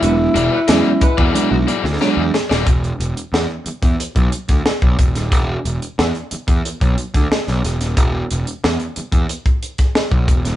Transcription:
<<
  \new Staff \with { instrumentName = "Overdriven electric guitar" } { \time 4/4 \key e \mixolydian \tempo 4 = 91 r8 <fis' gis' d''>16 r16 <fis' gis' d''>16 r8 <fis' gis' d''>16 <fis' gis' d''>16 r16 <fis' gis' d''>16 r16 <fis' gis' d''>16 r8 <fis' gis' d''>16 | r1 | r1 | r1 | }
  \new Staff \with { instrumentName = "Horn section" } { \time 4/4 \key e \mixolydian <gis fis' b'>16 r8 <gis fis' b'>16 r8 <gis fis' b'>8. r4. r16 | r1 | r1 | r1 | }
  \new Staff \with { instrumentName = "Alto saxophone" } { \time 4/4 \key e \mixolydian e'2. r4 | r1 | r1 | r1 | }
  \new Staff \with { instrumentName = "Reed electric piano" } { \time 4/4 \key e \mixolydian <fis gis b d'>8 r8 <fis gis b cis'>8 r8 <fis gis b d'>8 r8 <fis gis b d'>8 r8 | r1 | r1 | r1 | }
  \new Staff \with { instrumentName = "Picked electric bass" } { \clef bass \time 4/4 \key e \mixolydian e,,8 e,,16 r16 e,16 r8 e,16 r16 b,,16 r16 d,16 r16 e,16 r16 dis,,16 | e,,8 e,,16 r16 e,16 r8 e,16 r16 b,,16 r16 d,16 r16 b,,16 r16 dis,,16 | e,,8 e,,16 r16 e,16 r8 e,16 r16 b,,16 r16 d,16 r16 b,,16 e,,16 dis,,16 | e,,8 e,,16 r16 e,16 r8 e,16 r4 r16 b,,16 e,,16 dis,,16 | }
  \new DrumStaff \with { instrumentName = "Drums" } \drummode { \time 4/4 hh8 hh8 <hh sn>8 <hh bd>16 bd16 hh8 hh16 sn16 sn8 sn16 sn16 | <hh bd>16 hh16 hh16 hh16 sn8 hh16 <hh bd>16 hh16 <hh bd>16 hh16 <hh bd sn>16 sn16 bd16 <hh bd>16 <hh sn>16 | <hh bd>8 hh16 hh16 sn16 hh16 hh16 <hh bd>16 hh16 <hh bd>16 hh16 <hh bd sn>16 sn16 <hh sn>16 <hh sn>16 <hh sn>16 | <hh bd>8 hh16 hh16 sn16 hh16 hh16 <hh bd>16 hh16 <hh bd>16 hh16 <hh bd sn>16 sn16 bd16 <hh bd>16 <hh sn>16 | }
>>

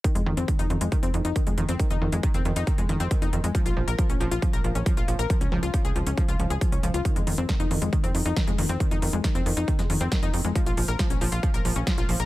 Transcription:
<<
  \new Staff \with { instrumentName = "Synth pluck" } { \clef bass \time 4/4 \key f \minor \tempo 4 = 137 ees16 aes16 ees16 c'16 ees16 ees'16 ees16 aes16 ees16 c'16 ees16 ees'16 ees16 aes16 ees16 c'16 | ees16 ees'16 ees16 aes16 ees16 c'16 ees16 ees'16 ees16 aes16 ees16 c'16 ees16 ees'16 ees16 aes16 | f16 f'16 f16 bes'16 f16 des'16 f16 f'16 f16 bes'16 f16 des'16 f16 f'16 f16 bes'16 | f16 des'16 f16 f'16 f16 aes'16 f16 des'16 f16 f'16 f16 aes'16 f16 des'16 f16 f'16 |
ees16 aes16 ees16 c'16 ees16 ees'16 ees16 aes16 ees16 c'16 ees16 ees'16 ees16 aes16 ees16 c'16 | ees16 ees'16 ees16 aes16 ees16 c'16 ees16 ees'16 ees16 aes16 ees16 c'16 ees16 ees'16 ees16 aes16 | f16 f'16 f16 bes'16 f16 des'16 f16 f'16 f16 bes'16 f16 des'16 f16 f'16 f16 bes'16 | }
  \new Staff \with { instrumentName = "Analog synth bass" } { \clef bass \time 4/4 \key f \minor r16 f,16 f,16 f,16 r16 f,16 f,16 f,16 r16 f,16 f,16 f,16 r16 f,16 f,16 f,16 | r16 f,16 f,16 f,16 r16 f,16 f,16 f,16 r16 f,16 f,16 f,16 r16 f,16 f,16 f,16 | r16 bes,,16 bes,,16 bes,,16 r16 bes,,16 bes,,16 bes,,16 r16 bes,,16 bes,,16 bes,,16 r16 bes,,16 bes,,16 bes,,16 | r16 des,16 des,16 des,16 r16 des,16 des,16 des,16 r16 des,16 des,16 des,16 r16 des,16 des,16 des,16 |
r16 f,16 f,16 f,16 r16 f,16 f,16 f,16 r16 f,16 f,16 f,16 r16 f,16 f,16 f,16 | r16 f,16 f,16 f,16 r16 f,16 f,16 f,16 r16 f,16 f,16 f,16 r16 f,16 f,16 f,16 | r16 bes,,16 bes,,16 bes,,16 r16 bes,,16 bes,,16 bes,,16 r16 bes,,16 bes,,16 bes,,16 r16 bes,,16 bes,,16 bes,,16 | }
  \new DrumStaff \with { instrumentName = "Drums" } \drummode { \time 4/4 <hh bd>16 hh8 hh16 <hh bd>16 hh16 hh16 hh16 <hh bd>16 hh16 hh16 hh16 <hh bd>16 hh16 hh16 hh16 | <hh bd>16 hh8 hh16 <hh bd>16 hh16 hh16 hh16 <hh bd>16 hh16 hh16 hh16 <hh bd>16 hh16 hh16 hh16 | <hh bd>16 hh8 hh16 <hh bd>16 hh16 hh16 hh16 <hh bd>16 hh16 hh16 hh16 <hh bd>16 hh16 hh16 hh16 | <hh bd>16 hh8 hh16 <hh bd>16 hh16 hh16 hh16 <hh bd>16 hh16 hh16 hh16 <hh bd>16 hh16 hh16 hh16 |
<hh bd>16 hh16 hho16 hh16 <hh bd sn>16 hh16 hho16 hh16 <hh bd>16 hh16 hho16 hh16 <hh bd sn>16 hh16 hho16 hh16 | <hh bd>16 hh16 hho16 hh16 <hh bd sn>16 hh16 hho16 hh16 <hh bd>16 <hh sn>16 hho16 hh16 <hh bd sn>16 hh16 hho16 hh16 | <hh bd>16 hh16 hho16 hh16 <hh bd sn>16 hh16 hho16 hh16 <hh bd>16 hh16 hho16 hh16 <hh bd sn>16 hh16 hho16 hh16 | }
>>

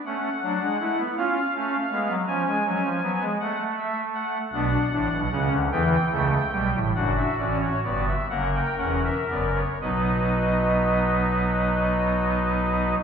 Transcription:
<<
  \new Staff \with { instrumentName = "Pipe organ" } { \time 6/8 \key fis \phrygian \tempo 4. = 50 << { fis''4. eis''4. | gis''4. fis''8 e''8 fis''8 | fis''4. g''4. | fis''16 e''16 d''16 cis''16 d''16 e''16 fis''16 g''16 fis''16 e''16 d''16 cis''16 |
<fis dis' dis''>2. | } \\ { cis'8 d'8 e'8 eis'8 cis'8 b8 | cis'8 cis'8 b8 a4. | d'2. | fis'4. ais'4. |
b'2. | } >> }
  \new Staff \with { instrumentName = "Pipe organ" } { \clef bass \time 6/8 \key fis \phrygian << { a8 fis16 gis16 a16 b16 cis'8 a8 gis16 fis16 | eis16 gis16 fis16 eis16 fis16 gis16 r4. | b8 d'8 cis'8 b8 a8 g8 | d'8 cis'8 b8 ais8 cis'8 b8 |
b2. | } \\ { r2. | r2. | <b,, b,>8 <a,, a,>16 <b,, b,>16 <cis, cis>16 <d, d>16 <e, e>8 <cis, cis>8 <b,, b,>16 <a,, a,>16 | <fis,, fis,>8 <a,, a,>8 <g,, g,>8 <fis,, fis,>8 <e,, e,>8 <fis,, fis,>8 |
<b,, b,>2. | } >> }
>>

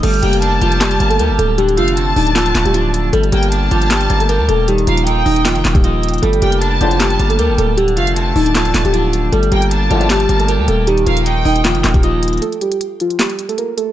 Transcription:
<<
  \new Staff \with { instrumentName = "Violin section" } { \time 4/4 \key g \minor \tempo 4 = 155 r8 g''8 a''2. | r8 f''8 a''2. | r8 g''8 a''2. | r8 f''8 g''2 r4 |
r8 g''8 a''2. | r8 f''8 a''2. | r8 g''8 a''2. | r8 f''8 g''2 r4 |
r1 | }
  \new Staff \with { instrumentName = "Synth keys" } { \time 4/4 \key g \minor a'8 g'8 r8 f'8 g'8. a'16 bes'8 a'8 | g'8 f'8 r8 ees'8 f'8. g'16 f'4 | a'8 g'8 r8 f'8 g'8. a'16 bes'8 a'8 | g'8 f'8 r8 ees'8 f'8. g'16 f'4 |
a'8 g'8 r8 f'8 g'8. a'16 bes'8 a'8 | g'8 f'8 r8 ees'8 f'8. g'16 f'4 | a'8 g'8 r8 f'8 g'8. a'16 bes'8 a'8 | g'8 f'8 r8 ees'8 f'8. g'16 f'4 |
a'8 g'8 r8 f'8 g'8. a'16 bes'8 a'8 | }
  \new Staff \with { instrumentName = "Clean electric guitar" } { \time 4/4 \key g \minor g8 bes8 d'8 g'8 g8 bes8 g'4 | d8 a8 c'8 d'8 d8 a8 d'4 | g8 bes8 d'8 g'8 g8 bes8 g'4 | ees8 bes8 ees'8 ees''8 ees8 bes8 ees''4 |
g8 bes8 d'8 g'8 g8 bes8 g'4 | d8 a8 c'8 d'8 d8 a8 d'4 | g8 bes8 d'8 g'8 g8 bes8 g'4 | ees8 bes8 ees'8 ees''8 ees8 bes8 ees''4 |
r1 | }
  \new Staff \with { instrumentName = "Brass ensemble" } { \clef bass \time 4/4 \key g \minor r1 | r1 | r1 | r1 |
r4. <bes,, a, d>8. r4. r16 | r1 | r4. <bes,, a, d>8. r4. r16 | r1 |
r1 | }
  \new Staff \with { instrumentName = "808-style bass" } { \clef bass \time 4/4 \key g \minor g,,8 f,,4 f,,4 g,,8 d,16 g,,16 d,,8~ | d,,8 f,,4 d,,4 d,,16 d,,4~ d,,16 | g,,8 g,,4 g,,4 g,,8. d,16 ees,,8~ | ees,,8 ees,,4 ees,,8. f,,16 ees,,4. |
g,,8 f,,4 f,,4 g,,8 d,16 g,,16 d,,8~ | d,,8 f,,4 d,,4 d,,16 d,,4~ d,,16 | g,,8 g,,4 g,,4 g,,8. d,16 ees,,8~ | ees,,8 ees,,4 ees,,8. f,,16 ees,,4. |
r1 | }
  \new DrumStaff \with { instrumentName = "Drums" } \drummode { \time 4/4 <cymc hh>16 hh16 hh16 hh16 hh8 hh16 hh16 <hc hh sn>16 hh16 hh16 hh16 hh8 hh8 | hh16 hh16 hh16 hh16 hh8 hho16 hh16 <hc hh sn>16 hh16 <hc hh sn>16 hh16 hh8 hh8 | hh16 hh16 hh16 hh16 hh8 hh16 hh16 <hc hh sn>16 hh16 hh16 hh16 hh8 hh8 | hh16 hh16 hh16 hh16 hh8 hho16 hh16 <hc hh sn>16 hh16 <hc hh sn>16 <hh bd>16 hh8 hh32 hh32 hh32 hh32 |
hh16 hh16 hh16 hh16 hh8 hh16 hh16 <hc hh sn>16 hh16 hh16 hh16 hh8 hh8 | hh16 hh16 hh16 hh16 hh8 hho16 hh16 <hc hh sn>16 hh16 <hc hh sn>16 hh16 hh8 hh8 | hh16 hh16 hh16 hh16 hh8 hh16 hh16 <hc hh sn>16 hh16 hh16 hh16 hh8 hh8 | hh16 hh16 hh16 hh16 hh8 hho16 hh16 <hc hh sn>16 hh16 <hc hh sn>16 <hh bd>16 hh8 hh32 hh32 hh32 hh32 |
hh16 hh16 hh16 hh16 hh8 hh16 hh16 <hc hh sn>16 hh16 hh16 hh16 hh8 hh8 | }
>>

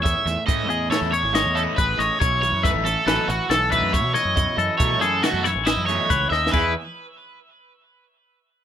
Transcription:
<<
  \new Staff \with { instrumentName = "Clean electric guitar" } { \time 5/4 \key e \major \tempo 4 = 139 cis''8 r4 gis'8 a'8 cis''8 dis''4 b'8 dis''8 | cis''4 e''4 b'4 a'8 e''4 cis''8~ | cis''8 a'4 gis'8 a'8 cis''8 dis''4 b'8 dis''8 | e'8 r1 r8 | }
  \new Staff \with { instrumentName = "Overdriven electric guitar" } { \time 5/4 \key e \major e''4 dis''4 cis''8 cis''4 a'8 b'8 cis''8 | cis''8 cis''8 b'8 a'8 a'8 fis'8 a'8 b'8 cis''8 dis''8~ | dis''4 cis''8 a'8 fis'8 e'8 e'8 cis''4 e''8 | b'8 r1 r8 | }
  \new Staff \with { instrumentName = "Clean electric guitar" } { \time 5/4 \key e \major << { gis'4 cis'8 e'8 gis'8 e'4 cis'8 gis'4 | e'4 a8 cis'8 e'8 cis'4 a8 e'4 | e'4 a8 b16 cis'16 e'8 cis'4 a4. | <e b dis' gis'>8 r1 r8 | } \\ { a,8 a2~ a8 a4 a,8 a8 | b,8 e2~ e8 e4 b,8 e8 | b,8 e2~ e8 e4 cis8 dis8 | e,8 r1 r8 | } >> }
  \new Staff \with { instrumentName = "Overdriven electric guitar" } { \time 5/4 \key e \major r4 <e a cis' e'>8 r8 <e a cis' e'>8 r4 <e a cis' e'>8 r4 | r4 <b, fis a dis'>8 r8 <b, fis a dis'>8 r4 <b, fis a dis'>8 r4 | r4 <b, fis a dis'>8 r8 <b, fis a dis'>8 r4 <b, fis a dis'>8 r4 | <e b e' gis'>8 r1 r8 | }
  \new Staff \with { instrumentName = "Fingered electric bass" } { \clef bass \time 5/4 \key e \major e,16 r16 e,16 r16 a,8 e,8 r16 e,8 gis,,8 e,8 r16 a,,8 a,,16 r16 | b,,8. fis,8 a,,8 r16 a,,16 r16 a,,16 r16 b,,8. fis,8 b,16 r16 fis,16~ | fis,16 r16 fis,16 r16 b,8 fis,8 r16 fis,8 a,,8 fis,8 r16 cis,8 dis,8 | e,8 r1 r8 | }
  \new DrumStaff \with { instrumentName = "Drums" } \drummode { \time 5/4 <hh bd>8 <hh sn>8 <hh bd>8 hh8 <hh sn>8 hh8 <hh sn>8 hh8 <hh bd>8 <hh sn>8 | <hh bd>8 hh8 <hh bd>8 <hh sn>8 <hh sn>8 hh8 <hh sn>8 <hh bd>8 <hh bd>8 <hh sn>8 | <hh bd>8 hh8 <hh bd>8 <hh sn>8 <hh sn>8 <hh sn>8 <hh sn>8 <hh sn>8 \tuplet 3/2 { <hh bd>16 r16 r16 sn16 r16 sn16 } | <cymc bd>4 r4 r4 r4 r4 | }
>>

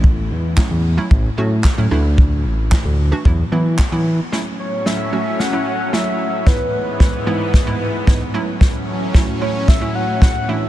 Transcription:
<<
  \new Staff \with { instrumentName = "Soft synth lead" } { \time 4/4 \key a \major \tempo 4 = 112 r1 | r1 | r8 cis''8 e''8 e''8 fis''8 fis''8 e''4 | b'2.~ b'8 r8 |
r4. cis''8 e''8 fis''8 fis''8 e''8 | }
  \new Staff \with { instrumentName = "Synth pluck" } { \time 4/4 \key a \major <fis a cis' e'>8. r16 <fis a cis' e'>8 r16 <fis a cis' e'>8 r16 <fis a cis' fis'>8 r16 <fis a cis' e'>16 <e a d' e'>8~ | <e a d' e'>8. r16 <e a d' e'>8 r16 <e a d' fis'>16 <e fis b e'>8 <e fis b e'>8 r16 <e fis b e'>8 r16 | <fis a cis' e'>8. r16 <fis a cis' e'>8 <fis a cis' fis'>8 r16 <fis a cis' e'>8 r16 <fis a cis' e'>8. r16 | <gis, e gis b e'>8. r16 <gis, e gis b e'>8 <gis, e gis b e'>8 r16 <gis, e gis b e'>8 r16 <gis, e gis b e'>8 <fis a cis' e'>8~ |
<fis a cis' e'>8. r16 <fis a cis' e'>8 <fis a cis' e'>8 r16 <fis a cis' e'>8 r16 <fis a cis' e'>8 <e a d' e'>8 | }
  \new Staff \with { instrumentName = "Supersaw synth" } { \clef bass \time 4/4 \key a \major r1 | r1 | <a, fis cis'>1 | <gis, e b>2.~ <gis, e b>8 <a, fis cis'>8~ |
<a, fis cis'>2.~ <a, fis cis'>8 <d, e>8 | }
  \new Staff \with { instrumentName = "Analog synth bass" } { \clef bass \time 4/4 \key a \major a,,8 e,8. e,8. a,,8 a,8. a,16 d,8~ | d,8 a,,8. d,8. e,8 e8. e8. | r1 | r1 |
r1 | }
  \new DrumStaff \with { instrumentName = "Drums" } \drummode { \time 4/4 bd4 <hc bd sn>4 bd4 <hc bd sn>4 | bd4 <hc bd sn>4 bd4 <hc bd sn>4 | sn4 sn4 sn4 sn4 | <bd sn>4 <bd sn>4 <bd sn>4 <bd sn>4 |
<bd sn>4 <bd sn>4 <bd sn>4 <bd sn>4 | }
>>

